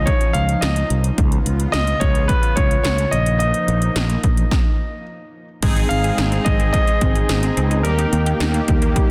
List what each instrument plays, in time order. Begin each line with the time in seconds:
Already playing: analog synth pad F3 C#4 D#4
0.06 grand piano C#5, kick, closed hi-hat
0.21 closed hi-hat
0.33 fretless electric bass C#2, grand piano F5, closed hi-hat
0.49 closed hi-hat
0.61 fretless electric bass C#2, grand piano D#5, snare, closed hi-hat
0.76 closed hi-hat
0.90 fretless electric bass C2, closed hi-hat
1.04 closed hi-hat
1.18 fretless electric bass C#2, analog synth pad C#3 B3 F4, kick, closed hi-hat
1.32 closed hi-hat
1.46 fretless electric bass C#2, closed hi-hat
1.60 closed hi-hat
1.72 fretless electric bass C#2, grand piano D#5, snare, closed hi-hat
1.87 closed hi-hat
2.00 fretless electric bass C#2, grand piano C#5, kick, closed hi-hat
2.15 closed hi-hat
2.28 grand piano B4, kick, closed hi-hat
2.43 closed hi-hat
2.56 fretless electric bass C#2, grand piano C#5, kick, closed hi-hat
2.71 closed hi-hat
2.83 fretless electric bass C#2, grand piano C#5, snare, closed hi-hat
2.98 closed hi-hat
3.11 fretless electric bass A#1, analog synth pad F3 A#3 D#4, grand piano D#5, closed hi-hat
3.26 closed hi-hat
3.39 grand piano D#5, closed hi-hat
3.54 closed hi-hat
3.68 fretless electric bass A#1, closed hi-hat
3.82 closed hi-hat
3.96 fretless electric bass A#1, snare, closed hi-hat
4.10 closed hi-hat
4.24 fretless electric bass A#1, kick, closed hi-hat
4.37 closed hi-hat
4.51 kick, snare
5.63 fretless electric bass G#1, synth arpeggio sound G#3, analog synth pad G#3 C4 D#4, analog polysynth C4 D#4 G#4, kick, closed hi-hat, crash
5.76 synth arpeggio sound D#4, closed hi-hat
5.89 fretless electric bass G#1, synth arpeggio sound C4, grand piano F5, closed hi-hat
6.04 synth arpeggio sound G#4, closed hi-hat
6.18 fretless electric bass G#1, synth arpeggio sound D#4, snare, closed hi-hat
6.32 synth arpeggio sound C4, closed hi-hat
6.45 fretless electric bass G#1, synth arpeggio sound G#3, grand piano D#5, kick, closed hi-hat
6.60 synth arpeggio sound C4, closed hi-hat
6.73 synth arpeggio sound G#3, grand piano D#5, kick, closed hi-hat
6.87 synth arpeggio sound D#4, closed hi-hat
7.01 fretless electric bass G#1, synth arpeggio sound C4, kick, closed hi-hat
7.15 synth arpeggio sound G#4, closed hi-hat
7.29 fretless electric bass G#1, synth arpeggio sound D#4, snare, closed hi-hat
7.43 synth arpeggio sound C4, closed hi-hat
7.57 fretless electric bass C#2, synth arpeggio sound C4, closed hi-hat
7.71 synth arpeggio sound D#4, closed hi-hat
7.83 fretless electric bass D#2, analog synth pad D#3 A#3 G4, synth arpeggio sound G3, analog polysynth A#3 D#4 G4, grand piano A#4, closed hi-hat
7.99 synth arpeggio sound D#4, closed hi-hat
8.13 fretless electric bass D#2, synth arpeggio sound A#3, closed hi-hat
8.26 synth arpeggio sound G4, closed hi-hat
8.40 fretless electric bass D#2, synth arpeggio sound D#4, snare, closed hi-hat
8.54 synth arpeggio sound A#3, closed hi-hat
8.68 fretless electric bass D#2, synth arpeggio sound G3, kick, closed hi-hat
8.82 synth arpeggio sound A#3, closed hi-hat
8.96 synth arpeggio sound G3, kick, closed hi-hat